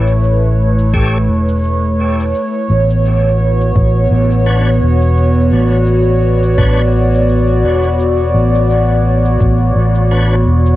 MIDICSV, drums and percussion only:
0, 0, Header, 1, 2, 480
1, 0, Start_track
1, 0, Tempo, 705882
1, 1596, Time_signature, 4, 2, 24, 8
1, 7318, End_track
2, 0, Start_track
2, 0, Title_t, "Drums"
2, 50, Note_on_c, 9, 69, 62
2, 118, Note_off_c, 9, 69, 0
2, 161, Note_on_c, 9, 69, 50
2, 229, Note_off_c, 9, 69, 0
2, 534, Note_on_c, 9, 69, 62
2, 602, Note_off_c, 9, 69, 0
2, 634, Note_on_c, 9, 69, 53
2, 635, Note_on_c, 9, 36, 97
2, 702, Note_off_c, 9, 69, 0
2, 703, Note_off_c, 9, 36, 0
2, 1010, Note_on_c, 9, 69, 62
2, 1078, Note_off_c, 9, 69, 0
2, 1114, Note_on_c, 9, 69, 52
2, 1182, Note_off_c, 9, 69, 0
2, 1496, Note_on_c, 9, 69, 59
2, 1564, Note_off_c, 9, 69, 0
2, 1597, Note_on_c, 9, 69, 49
2, 1665, Note_off_c, 9, 69, 0
2, 1975, Note_on_c, 9, 69, 61
2, 2043, Note_off_c, 9, 69, 0
2, 2078, Note_on_c, 9, 69, 53
2, 2146, Note_off_c, 9, 69, 0
2, 2453, Note_on_c, 9, 69, 50
2, 2521, Note_off_c, 9, 69, 0
2, 2554, Note_on_c, 9, 36, 96
2, 2558, Note_on_c, 9, 69, 48
2, 2622, Note_off_c, 9, 36, 0
2, 2626, Note_off_c, 9, 69, 0
2, 2935, Note_on_c, 9, 69, 59
2, 3003, Note_off_c, 9, 69, 0
2, 3034, Note_on_c, 9, 69, 46
2, 3102, Note_off_c, 9, 69, 0
2, 3412, Note_on_c, 9, 69, 52
2, 3480, Note_off_c, 9, 69, 0
2, 3518, Note_on_c, 9, 69, 52
2, 3586, Note_off_c, 9, 69, 0
2, 3892, Note_on_c, 9, 69, 57
2, 3960, Note_off_c, 9, 69, 0
2, 3993, Note_on_c, 9, 69, 49
2, 4061, Note_off_c, 9, 69, 0
2, 4373, Note_on_c, 9, 69, 60
2, 4441, Note_off_c, 9, 69, 0
2, 4475, Note_on_c, 9, 36, 97
2, 4481, Note_on_c, 9, 69, 49
2, 4543, Note_off_c, 9, 36, 0
2, 4549, Note_off_c, 9, 69, 0
2, 4860, Note_on_c, 9, 69, 56
2, 4928, Note_off_c, 9, 69, 0
2, 4958, Note_on_c, 9, 69, 49
2, 5026, Note_off_c, 9, 69, 0
2, 5325, Note_on_c, 9, 69, 55
2, 5393, Note_off_c, 9, 69, 0
2, 5438, Note_on_c, 9, 69, 52
2, 5506, Note_off_c, 9, 69, 0
2, 5814, Note_on_c, 9, 69, 65
2, 5882, Note_off_c, 9, 69, 0
2, 5919, Note_on_c, 9, 69, 50
2, 5987, Note_off_c, 9, 69, 0
2, 6291, Note_on_c, 9, 69, 58
2, 6359, Note_off_c, 9, 69, 0
2, 6395, Note_on_c, 9, 36, 93
2, 6399, Note_on_c, 9, 69, 56
2, 6463, Note_off_c, 9, 36, 0
2, 6467, Note_off_c, 9, 69, 0
2, 6766, Note_on_c, 9, 69, 61
2, 6834, Note_off_c, 9, 69, 0
2, 6872, Note_on_c, 9, 69, 50
2, 6940, Note_off_c, 9, 69, 0
2, 7251, Note_on_c, 9, 69, 59
2, 7318, Note_off_c, 9, 69, 0
2, 7318, End_track
0, 0, End_of_file